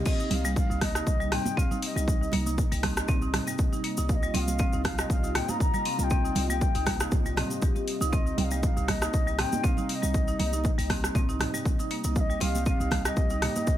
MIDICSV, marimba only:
0, 0, Header, 1, 2, 480
1, 0, Start_track
1, 0, Key_signature, -3, "minor"
1, 0, Tempo, 504202
1, 55, Time_signature, 4, 2, 24, 8
1, 13115, End_track
2, 0, Start_track
2, 0, Title_t, "Marimba"
2, 0, Program_c, 0, 12
2, 54, Note_on_c, 0, 60, 97
2, 179, Note_off_c, 0, 60, 0
2, 186, Note_on_c, 0, 63, 74
2, 245, Note_off_c, 0, 63, 0
2, 426, Note_on_c, 0, 55, 78
2, 524, Note_off_c, 0, 55, 0
2, 667, Note_on_c, 0, 63, 76
2, 725, Note_off_c, 0, 63, 0
2, 775, Note_on_c, 0, 58, 76
2, 900, Note_off_c, 0, 58, 0
2, 906, Note_on_c, 0, 63, 78
2, 965, Note_off_c, 0, 63, 0
2, 1146, Note_on_c, 0, 55, 77
2, 1205, Note_off_c, 0, 55, 0
2, 1256, Note_on_c, 0, 60, 79
2, 1380, Note_off_c, 0, 60, 0
2, 1494, Note_on_c, 0, 60, 104
2, 1619, Note_off_c, 0, 60, 0
2, 1626, Note_on_c, 0, 63, 74
2, 1685, Note_off_c, 0, 63, 0
2, 1868, Note_on_c, 0, 55, 75
2, 1965, Note_off_c, 0, 55, 0
2, 2107, Note_on_c, 0, 63, 77
2, 2166, Note_off_c, 0, 63, 0
2, 2217, Note_on_c, 0, 58, 76
2, 2341, Note_off_c, 0, 58, 0
2, 2346, Note_on_c, 0, 63, 78
2, 2405, Note_off_c, 0, 63, 0
2, 2588, Note_on_c, 0, 55, 76
2, 2646, Note_off_c, 0, 55, 0
2, 2697, Note_on_c, 0, 60, 75
2, 2821, Note_off_c, 0, 60, 0
2, 2935, Note_on_c, 0, 60, 102
2, 3060, Note_off_c, 0, 60, 0
2, 3067, Note_on_c, 0, 63, 79
2, 3126, Note_off_c, 0, 63, 0
2, 3307, Note_on_c, 0, 55, 78
2, 3405, Note_off_c, 0, 55, 0
2, 3548, Note_on_c, 0, 63, 76
2, 3606, Note_off_c, 0, 63, 0
2, 3654, Note_on_c, 0, 58, 76
2, 3779, Note_off_c, 0, 58, 0
2, 3786, Note_on_c, 0, 63, 79
2, 3845, Note_off_c, 0, 63, 0
2, 4026, Note_on_c, 0, 55, 79
2, 4085, Note_off_c, 0, 55, 0
2, 4133, Note_on_c, 0, 60, 77
2, 4259, Note_off_c, 0, 60, 0
2, 4373, Note_on_c, 0, 60, 102
2, 4499, Note_off_c, 0, 60, 0
2, 4506, Note_on_c, 0, 63, 76
2, 4565, Note_off_c, 0, 63, 0
2, 4748, Note_on_c, 0, 55, 80
2, 4845, Note_off_c, 0, 55, 0
2, 4987, Note_on_c, 0, 63, 78
2, 5046, Note_off_c, 0, 63, 0
2, 5095, Note_on_c, 0, 58, 78
2, 5220, Note_off_c, 0, 58, 0
2, 5228, Note_on_c, 0, 63, 78
2, 5286, Note_off_c, 0, 63, 0
2, 5464, Note_on_c, 0, 55, 74
2, 5524, Note_off_c, 0, 55, 0
2, 5575, Note_on_c, 0, 60, 79
2, 5700, Note_off_c, 0, 60, 0
2, 5815, Note_on_c, 0, 60, 103
2, 5940, Note_off_c, 0, 60, 0
2, 5947, Note_on_c, 0, 63, 78
2, 6005, Note_off_c, 0, 63, 0
2, 6187, Note_on_c, 0, 55, 79
2, 6284, Note_off_c, 0, 55, 0
2, 6427, Note_on_c, 0, 63, 77
2, 6486, Note_off_c, 0, 63, 0
2, 6534, Note_on_c, 0, 58, 75
2, 6659, Note_off_c, 0, 58, 0
2, 6668, Note_on_c, 0, 63, 78
2, 6726, Note_off_c, 0, 63, 0
2, 6909, Note_on_c, 0, 55, 78
2, 6966, Note_off_c, 0, 55, 0
2, 7018, Note_on_c, 0, 60, 78
2, 7134, Note_off_c, 0, 60, 0
2, 7255, Note_on_c, 0, 67, 81
2, 7373, Note_off_c, 0, 67, 0
2, 7388, Note_on_c, 0, 67, 74
2, 7485, Note_off_c, 0, 67, 0
2, 7626, Note_on_c, 0, 63, 100
2, 7724, Note_off_c, 0, 63, 0
2, 7735, Note_on_c, 0, 60, 101
2, 7860, Note_off_c, 0, 60, 0
2, 7864, Note_on_c, 0, 63, 79
2, 7924, Note_off_c, 0, 63, 0
2, 8106, Note_on_c, 0, 55, 78
2, 8204, Note_off_c, 0, 55, 0
2, 8345, Note_on_c, 0, 63, 77
2, 8404, Note_off_c, 0, 63, 0
2, 8454, Note_on_c, 0, 58, 78
2, 8579, Note_off_c, 0, 58, 0
2, 8583, Note_on_c, 0, 63, 80
2, 8643, Note_off_c, 0, 63, 0
2, 8825, Note_on_c, 0, 55, 78
2, 8884, Note_off_c, 0, 55, 0
2, 8934, Note_on_c, 0, 60, 77
2, 9059, Note_off_c, 0, 60, 0
2, 9173, Note_on_c, 0, 60, 103
2, 9299, Note_off_c, 0, 60, 0
2, 9306, Note_on_c, 0, 63, 77
2, 9365, Note_off_c, 0, 63, 0
2, 9543, Note_on_c, 0, 55, 78
2, 9643, Note_off_c, 0, 55, 0
2, 9787, Note_on_c, 0, 63, 77
2, 9846, Note_off_c, 0, 63, 0
2, 9894, Note_on_c, 0, 58, 77
2, 10019, Note_off_c, 0, 58, 0
2, 10027, Note_on_c, 0, 63, 77
2, 10085, Note_off_c, 0, 63, 0
2, 10266, Note_on_c, 0, 55, 77
2, 10325, Note_off_c, 0, 55, 0
2, 10374, Note_on_c, 0, 60, 76
2, 10499, Note_off_c, 0, 60, 0
2, 10616, Note_on_c, 0, 60, 102
2, 10740, Note_off_c, 0, 60, 0
2, 10748, Note_on_c, 0, 63, 79
2, 10806, Note_off_c, 0, 63, 0
2, 10985, Note_on_c, 0, 55, 76
2, 11084, Note_off_c, 0, 55, 0
2, 11229, Note_on_c, 0, 63, 80
2, 11286, Note_off_c, 0, 63, 0
2, 11337, Note_on_c, 0, 58, 78
2, 11461, Note_off_c, 0, 58, 0
2, 11467, Note_on_c, 0, 63, 79
2, 11525, Note_off_c, 0, 63, 0
2, 11706, Note_on_c, 0, 55, 78
2, 11765, Note_off_c, 0, 55, 0
2, 11814, Note_on_c, 0, 60, 76
2, 11939, Note_off_c, 0, 60, 0
2, 12056, Note_on_c, 0, 60, 102
2, 12180, Note_off_c, 0, 60, 0
2, 12189, Note_on_c, 0, 63, 75
2, 12246, Note_off_c, 0, 63, 0
2, 12428, Note_on_c, 0, 55, 80
2, 12525, Note_off_c, 0, 55, 0
2, 12669, Note_on_c, 0, 63, 81
2, 12727, Note_off_c, 0, 63, 0
2, 12778, Note_on_c, 0, 58, 78
2, 12901, Note_off_c, 0, 58, 0
2, 12910, Note_on_c, 0, 63, 79
2, 12967, Note_off_c, 0, 63, 0
2, 13115, End_track
0, 0, End_of_file